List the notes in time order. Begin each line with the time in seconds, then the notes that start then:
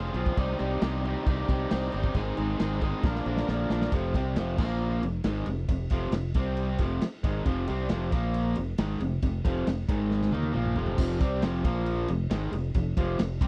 Already playing: F3 C4 F4 G#4
0.14 B1 F3 C4 F4 G#4, crash
0.26 kick
0.37 C2 C3 G3 C4 D#4 G4, kick, crash
0.59 C2 C3 G3 C4 D#4 G4, crash
0.81 C2 C3 G3 C4 D#4 G4, snare, crash
1.05 C3 G3 C4 D#4 G4, crash
1.26 C2 C3 G3 C4 D#4 G4, kick, crash
1.49 C2 C3 G3 C4 D#4 G4, kick, crash
1.70 C2 C3 G3 C4 D#4 G4, snare, crash
1.92 G1 C3 G3 C4 D#4 G4, crash
2.04 kick
2.14 G#1 G#2 D#3 G#3 C4 D#4 G#4, kick, crash
2.37 G#1 G#2 D#3 G#3 C4 D#4 G#4, crash
2.59 G#1 G#2 D#3 G#3 C4 D#4 G#4, snare, crash
2.81 G#2 D#3 G#3 C4 D#4 G#4, kick, crash
3.03 A#1 A#2 D3 F3 A#3 D4 A#4, kick, snare
3.15 snare
3.26 A#1 A#2 D3 F3 A#3 D4 A#4
3.37 snare
3.48 A#1 A#2 D3 F3 A#3 D4 A#4, snare
3.70 A#1 A#2 D3 F3 A#3 D4 A#4, snare
3.82 snare
3.92 F1 F2 C3 F3, kick, ride
4.14 C2 C3 G3 C4, kick, ride
4.36 F1 F2 C3 F3, snare, ride
4.58 A#1 A#2 F3 A#3, kick, crash
5.02 F1 F2 C3, ride
5.24 G#1 G#2 D#3 G#3, snare, ride
5.46 F1 F2 C3, ride
5.68 F1 F2 C3, kick, ride
5.90 F1 F2 C3 F3, kick, ride
6.11 F1 F2 C3, snare, ride
6.34 C2 C3 G3 C4, kick, ride
6.57 ride
6.78 F1 F2 C3 F3, kick, ride
7.01 muted overdriven electric guitar stroke, snare, ride
7.23 G#1 G#2 D#3 G#3, kick, ride
7.45 F1 F2 C3 F3, kick, ride
7.67 C2 C3 G3 C4, ride
7.89 F1 F2 C3 F3, snare, ride
8.12 A#1 A#2 F3 A#3, kick, ride
8.34 ride
8.55 F1 F2 C3, ride
8.78 G#1 G#2 D#3 G#3, snare, ride
9.00 F1 F2 C3, ride
9.22 F1 F2 C3, kick, ride
9.44 F1 F2 C3 F3, kick, ride
9.67 F1 F2 C3, snare, ride
9.88 G#1 G#2 D#3 G#3, kick, ride
10.11 snare
10.22 snare
10.32 D#2 D#3 A#3 D#4, high tom
10.43 high tom
10.53 A#1 A#2 F3 A#3, mid tom
10.65 mid tom
10.76 F1 F2 C3 F3, floor tom
10.86 floor tom
10.98 F1 F2 C3 F3, kick, crash
11.20 C2 C3 G3 C4, kick, ride
11.42 F1 F2 C3 F3, snare, ride
11.64 A#1 A#2 F3 A#3, kick, ride
11.86 ride
12.08 F1 F2 C3, ride
12.30 G#1 G#2 D#3 G#3, snare, ride
12.52 F1 F2 C3, ride
12.74 F1 F2 C3, kick, ride
12.97 F1 F2 C3 F3, kick, ride
13.19 F1 F2 C3, snare, ride
13.41 C2 C3 G3 C4, kick, ride